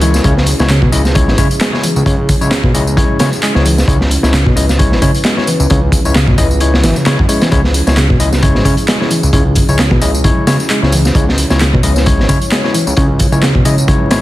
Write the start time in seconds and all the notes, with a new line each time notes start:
Already playing: C#2 C#4 E4 A#4
0.01 E3 G#3 C#4 E4 C#5, closed hi-hat, tambourine
0.14 snare, tambourine
0.24 C#2 C#3 G#3 C#4 E4 G#4 C#5, kick, closed hi-hat, tambourine
0.37 snare
0.46 closed hi-hat, open hi-hat, tambourine
0.59 C#2 G#3 C#4 E4 C#5, snare, tambourine
0.70 C#3, snare, clap, closed hi-hat, tambourine
0.82 B2, kick
0.92 C#2 G#3 C#4 E4 D#5, closed hi-hat, open hi-hat, tambourine
1.05 snare, tambourine
1.15 G#3 C#4 E4 C#5, kick, closed hi-hat, tambourine
1.28 G#1, snare
1.38 C#3 G#3 C#4 E4 C#5, kick, closed hi-hat, open hi-hat, tambourine
1.51 closed hi-hat, tambourine
1.61 G#3, snare, clap, closed hi-hat, tambourine
1.73 G#3 C#4 E4 C#5, snare
1.83 E3, closed hi-hat, open hi-hat, tambourine
1.96 C#2, tambourine
2.06 C#2 C#3 G#3 C#4 E4 C#5, kick, closed hi-hat, tambourine
2.29 kick, closed hi-hat, open hi-hat, tambourine
2.41 C#2 G#3 C#4 E4 C#5, tambourine
2.51 C#3, snare, clap, closed hi-hat, tambourine
2.64 B2, kick
2.74 C#2 G#3 C#4 E4 D#5, closed hi-hat, open hi-hat, tambourine
2.87 tambourine
2.97 G#3 C#4 E4 C#5, kick, closed hi-hat, tambourine
3.19 C#3 G#3 C#4 E4 C#5, snare, closed hi-hat, open hi-hat, tambourine
3.33 tambourine
3.43 G#3, clap, closed hi-hat, tambourine
3.55 C#2 G#3 C#4 E4 C#5, snare
3.66 E3, closed hi-hat, open hi-hat, tambourine
3.78 snare, tambourine
3.88 C#2 C#3 G#3 C#4 E4 B4 C#5, kick, closed hi-hat, tambourine
4.01 snare
4.11 closed hi-hat, open hi-hat, tambourine
4.23 C#2 G#3 C#4 E4 C#5, snare, tambourine
4.34 C#3, snare, clap, closed hi-hat, tambourine
4.46 B2, kick
4.56 C#2 G#3 C#4 E4 D#5, closed hi-hat, open hi-hat, tambourine
4.69 snare, tambourine
4.79 G#3 C#4 E4 C#5, kick, closed hi-hat, tambourine
4.92 G#1, snare
5.02 C#3 G#3 C#4 E4 C#5, kick, closed hi-hat, open hi-hat, tambourine
5.15 closed hi-hat, tambourine
5.24 G#3, snare, clap, closed hi-hat
5.37 G#3 C#4 E4 C#5, snare
5.47 E3, closed hi-hat, open hi-hat, tambourine
5.60 C#2, tambourine
5.70 C#2 C#3 G#3 C#4 E4 C#5, kick, closed hi-hat, tambourine
5.92 kick, closed hi-hat, open hi-hat, tambourine
6.05 C#2 G#3 C#4 E4 C#5, tambourine
6.15 C#3, snare, clap, closed hi-hat
6.28 B2, kick
6.38 C#2 G#3 C#4 E4 D#5, kick, closed hi-hat, open hi-hat, tambourine
6.51 tambourine
6.60 G#3 C#4 E4 C#5, closed hi-hat, tambourine
6.74 snare
6.83 G#1 E3, snare, closed hi-hat, open hi-hat, tambourine
6.96 C#3, tambourine
7.06 C#3 G#3 C#4 E4 C#5, snare, clap, closed hi-hat, tambourine
7.19 F#2, kick
7.29 G#3 C#4 E4 C#5, closed hi-hat, open hi-hat, tambourine
7.41 E3, snare, closed hi-hat, tambourine
7.51 C#2 C#3 G#3 C#4 E4 G#4 C#5, kick, closed hi-hat, tambourine
7.64 snare
7.74 closed hi-hat, open hi-hat, tambourine
7.87 C#2 G#3 C#4 E4 C#5, snare, tambourine
7.97 C#3, snare, clap, closed hi-hat, tambourine
8.10 B2, kick
8.20 C#2 G#3 C#4 E4 D#5, closed hi-hat, open hi-hat, tambourine
8.33 snare, tambourine
8.42 G#3 C#4 E4 C#5, kick, closed hi-hat, tambourine
8.55 G#1, snare
8.65 C#3 G#3 C#4 E4 C#5, kick, closed hi-hat, open hi-hat, tambourine
8.77 closed hi-hat, tambourine
8.88 G#3, snare, clap, closed hi-hat, tambourine
9.00 G#3 C#4 E4 C#5, snare
9.11 E3, closed hi-hat, open hi-hat, tambourine
9.23 C#2, tambourine
9.33 C#2 C#3 G#3 C#4 E4 C#5, kick, closed hi-hat, tambourine
9.55 kick, closed hi-hat, open hi-hat, tambourine
9.69 C#2 G#3 C#4 E4 C#5, tambourine
9.79 C#3, snare, clap, closed hi-hat, tambourine
9.91 B2, kick
10.01 C#2 G#3 C#4 E4 D#5, closed hi-hat, open hi-hat, tambourine
10.15 tambourine
10.24 G#3 C#4 E4 C#5, kick, closed hi-hat, tambourine
10.47 C#3 G#3 C#4 E4 C#5, snare, closed hi-hat, open hi-hat, tambourine
10.60 tambourine
10.70 G#3, clap, closed hi-hat, tambourine
10.82 C#2 G#3 C#4 E4 C#5, snare
10.92 E3, closed hi-hat, open hi-hat, tambourine
11.05 snare, tambourine
11.15 C#2 C#3 G#3 C#4 E4 C#5, kick, closed hi-hat, tambourine
11.29 snare
11.38 closed hi-hat, open hi-hat, tambourine
11.50 C#2 G#3 C#4 E4 C#5, snare, tambourine
11.61 C#3, snare, clap, closed hi-hat, tambourine
11.73 B2, kick
11.83 C#2 G#3 C#4 E4 D#5, closed hi-hat, open hi-hat, tambourine
11.96 snare, tambourine
12.06 G#3 C#4 E4 C#5, kick, closed hi-hat, tambourine
12.19 G#1, snare
12.29 C#3 G#3 C#4 E4 C#5, kick, closed hi-hat, open hi-hat, tambourine
12.41 closed hi-hat, tambourine
12.51 G#3, snare, clap, closed hi-hat, tambourine
12.64 G#3 C#4 E4 C#5, snare
12.74 E3, closed hi-hat, open hi-hat, tambourine
12.87 C#2, tambourine
12.97 C#2 C#3 G#3 C#4 E4 C#5, kick, closed hi-hat, tambourine
13.19 kick, closed hi-hat, open hi-hat, tambourine
13.32 C#2 G#3 C#4 E4 C#5, tambourine
13.43 C#3, snare, clap, closed hi-hat, tambourine
13.55 B2, kick
13.65 C#2 G#3 C#4 E4 D#5, closed hi-hat, open hi-hat, tambourine
13.78 tambourine
13.88 G#3 C#4 E4 C#5, kick, closed hi-hat, tambourine
14.11 G#1 G#3 C#4 E4 C#5, snare, closed hi-hat, open hi-hat, tambourine